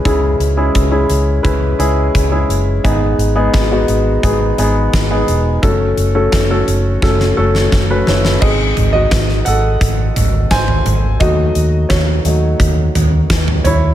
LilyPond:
<<
  \new Staff \with { instrumentName = "Grand piano" } { \time 4/4 \key gis \phrygian \tempo 4 = 86 << { r1 | r1 | r2. r8 <e' cis''>8 | <gis' dis''>8. <fis' dis''>8. <a' fis''>4 r8 <bis' gis''>4 |
<fis' dis''>4 <fis' cis''>4 r4. <e' cis''>8 | } \\ { <gis cis' e' gis'>8 r16 <gis cis' e' gis'>8 <gis cis' e' gis'>8 r16 <gis cis' e' b'>8 <gis cis' e' gis'>8 r16 <gis cis' e' gis'>8 r16 | <gis b dis' gis'>8 r16 <gis b dis' gis'>8 <gis b dis' fis'>8 r16 <gis b dis' gis'>8 <gis b dis' gis'>8 r16 <gis b dis' gis'>8 r16 | <a cis' fis' a'>8 r16 <a cis' fis' a'>8 <a cis' fis' a'>8 r16 <a cis' fis' a'>8 <a cis' fis' a'>8 r16 <a cis' fis' b'>8 r16 | r1 |
r1 | } >> }
  \new Staff \with { instrumentName = "Grand piano" } { \time 4/4 \key gis \phrygian cis4. r2 r8 | gis,4. r2 r8 | r1 | <gis bis dis'>4. r2 r8 |
<fis a dis'>8 r4 <fis a dis'>8 r2 | }
  \new Staff \with { instrumentName = "Fingered electric bass" } { \clef bass \time 4/4 \key gis \phrygian cis,8 cis,8 cis,8 cis,8 cis,8 cis,8 cis,8 fis,,8 | gis,,8 gis,,8 gis,,8 gis,,8 gis,,8 gis,,8 gis,,8 e,,8 | fis,,8 fis,,8 fis,,8 fis,,8 fis,,8 fis,,8 fis,,8 fis,,8 | gis,,8 gis,,8 gis,,8 gis,,8 gis,,8 gis,,8 gis,,8 gis,,8 |
dis,8 dis,8 dis,8 dis,8 dis,8 dis,8 dis,8 dis,8 | }
  \new DrumStaff \with { instrumentName = "Drums" } \drummode { \time 4/4 <hh bd>8 hh8 <hh bd>8 hh8 <hh bd>8 hh8 <hh bd>8 hh8 | <hh bd>8 hh8 <hh bd sn>8 hh8 <hh bd>8 hh8 <hh bd sn>8 hh8 | <hh bd>8 hh8 <hh bd sn>8 hh8 <bd sn>16 sn8 sn16 <bd sn>8 sn16 sn16 | <cymc bd>8 <hh tomfh>8 <hh bd sn>16 sn16 hh8 <hh bd>8 <hh tomfh>8 <hh bd sn>16 tomfh16 <hh tomfh>8 |
<hh bd>8 hh8 <hh bd sn>8 hh8 <hh bd>8 <hh tomfh>8 <hh bd sn>16 tomfh16 <hh tomfh>8 | }
>>